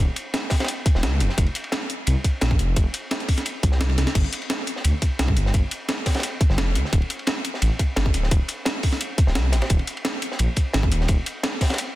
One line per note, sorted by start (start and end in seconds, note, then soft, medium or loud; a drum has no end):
0.16 closed hi-hat medium
0.16 ride medium
0.34 snare loud
0.34 closed hi-hat medium
0.34 ride medium
0.50 kick medium
0.50 snare loud
0.50 open hi-hat medium
0.50 ride medium
0.60 snare soft
0.60 snare medium
0.60 ride medium
0.64 snare medium
0.64 ride medium
0.68 closed hi-hat medium
0.68 ride medium
0.86 kick loud
0.86 closed hi-hat medium
0.86 ride medium
0.95 1.05 D#1 medium
0.95 snare medium
1.03 1.22 C#2 loud
1.03 snare loud
1.03 closed hi-hat medium
1.03 ride medium
1.20 1.29 F1 medium
1.20 closed hi-hat medium
1.20 ride medium
1.29 snare soft
1.38 1.46 F1 loud
1.38 kick loud
1.38 closed hi-hat medium
1.38 ride medium
1.46 ride soft
1.55 closed hi-hat medium
1.55 ride medium
1.64 ride soft
1.72 snare loud
1.72 closed hi-hat medium
1.72 ride medium
1.90 closed hi-hat medium
2.07 2.15 C2 loud
2.07 closed hi-hat medium
2.07 ride medium
2.24 kick medium
2.24 closed hi-hat medium
2.24 ride medium
2.41 2.58 A#1 medium
2.41 snare loud
2.41 closed hi-hat medium
2.41 ride medium
2.51 kick loud
2.51 ride soft
2.59 2.75 F1 medium
2.59 closed hi-hat medium
2.76 2.85 F1 loud
2.76 kick loud
2.76 closed hi-hat medium
2.76 ride medium
2.94 closed hi-hat medium
2.94 ride medium
3.11 snare loud
3.11 closed hi-hat medium
3.11 ride medium
3.20 closed hi-hat soft
3.28 kick medium
3.28 open hi-hat medium
3.28 ride medium
3.37 snare soft
3.37 closed hi-hat soft
3.37 ride soft
3.46 closed hi-hat medium
3.46 ride medium
3.63 3.71 C2 medium
3.63 kick loud
3.63 closed hi-hat medium
3.63 ride medium
3.72 3.97 C2 medium
3.72 snare medium
3.81 snare loud
3.81 closed hi-hat medium
3.81 ride medium
3.90 snare medium
3.98 4.06 C2 medium
3.98 snare medium
3.98 closed hi-hat medium
3.98 ride medium
4.07 snare soft
4.07 snare medium
4.07 closed hi-hat soft
4.15 4.23 G1 loud
4.15 kick loud
4.15 closed hi-hat loud
4.15 crash medium
4.15 ride medium
4.24 ride soft
4.33 closed hi-hat medium
4.33 ride medium
4.42 ride soft
4.50 snare loud
4.50 closed hi-hat medium
4.50 ride medium
4.67 closed hi-hat medium
4.67 ride medium
4.76 snare soft
4.84 4.93 D2 medium
4.84 closed hi-hat loud
4.84 ride medium
5.02 kick medium
5.02 closed hi-hat medium
5.02 ride medium
5.19 5.35 C2 medium
5.19 snare loud
5.19 closed hi-hat loud
5.19 ride loud
5.28 kick loud
5.28 ride soft
5.36 5.52 G1 loud
5.36 closed hi-hat medium
5.36 ride medium
5.46 snare medium
5.54 5.62 G1 loud
5.54 kick loud
5.54 closed hi-hat loud
5.54 ride medium
5.71 closed hi-hat medium
5.71 ride medium
5.89 snare loud
5.89 closed hi-hat medium
5.89 ride medium
6.06 kick medium
6.06 snare loud
6.06 open hi-hat medium
6.06 ride medium
6.14 snare soft
6.14 snare medium
6.14 ride medium
6.19 snare loud
6.19 closed hi-hat loud
6.19 ride medium
6.23 ride loud
6.41 kick loud
6.41 closed hi-hat medium
6.41 ride medium
6.50 6.60 G1 medium
6.50 snare medium
6.58 6.77 F1 loud
6.58 snare loud
6.58 closed hi-hat loud
6.58 ride loud
6.75 6.83 D2 medium
6.75 closed hi-hat medium
6.75 ride medium
6.85 snare soft
6.93 7.01 D1 loud
6.93 kick loud
6.93 closed hi-hat medium
6.93 ride medium
7.02 ride soft
7.10 closed hi-hat medium
7.10 ride medium
7.19 ride soft
7.27 snare loud
7.27 closed hi-hat medium
7.27 ride medium
7.45 closed hi-hat medium
7.45 ride medium
7.54 snare soft
7.62 7.70 A1 medium
7.62 closed hi-hat loud
7.62 ride medium
7.79 kick medium
7.79 closed hi-hat medium
7.79 ride medium
7.96 8.12 G1 medium
7.96 snare loud
7.96 closed hi-hat loud
7.96 ride medium
8.06 kick loud
8.06 ride soft
8.14 8.30 D1 loud
8.14 closed hi-hat medium
8.14 ride medium
8.23 snare soft
8.31 8.40 D1 loud
8.31 kick loud
8.31 closed hi-hat medium
8.31 ride medium
8.48 closed hi-hat medium
8.48 ride medium
8.65 snare loud
8.65 closed hi-hat medium
8.65 ride medium
8.83 kick medium
8.83 open hi-hat medium
8.83 ride medium
8.92 snare soft
8.92 ride soft
9.01 closed hi-hat loud
9.01 ride loud
9.18 kick loud
9.18 closed hi-hat medium
9.18 ride medium
9.27 9.37 D1 medium
9.27 snare medium
9.35 9.54 C2 loud
9.35 snare loud
9.35 closed hi-hat medium
9.35 ride medium
9.52 9.61 A1 medium
9.52 snare loud
9.52 closed hi-hat medium
9.52 ride medium
9.62 snare loud
9.62 ride medium
9.70 9.78 D#1 loud
9.70 kick loud
9.70 closed hi-hat medium
9.70 ride medium
9.79 ride soft
9.87 closed hi-hat medium
9.87 ride medium
9.97 ride soft
10.05 snare loud
10.05 closed hi-hat medium
10.05 ride medium
10.22 closed hi-hat medium
10.22 ride medium
10.32 snare soft
10.39 10.48 A#1 loud
10.39 closed hi-hat medium
10.39 ride medium
10.56 kick medium
10.56 closed hi-hat medium
10.56 ride medium
10.73 10.90 G#1 medium
10.73 snare loud
10.73 closed hi-hat medium
10.73 ride medium
10.83 kick loud
10.83 ride soft
10.92 11.07 D#1 medium
10.92 closed hi-hat medium
10.92 ride medium
11.01 snare soft
11.08 11.17 D#1 loud
11.08 kick loud
11.08 closed hi-hat medium
11.08 ride medium
11.26 closed hi-hat medium
11.26 ride medium
11.43 snare loud
11.43 closed hi-hat medium
11.43 ride medium
11.61 kick medium
11.61 snare loud
11.61 open hi-hat medium
11.61 ride medium
11.70 snare medium
11.70 snare soft
11.70 ride medium
11.74 snare loud
11.74 ride medium
11.78 closed hi-hat medium
11.78 ride medium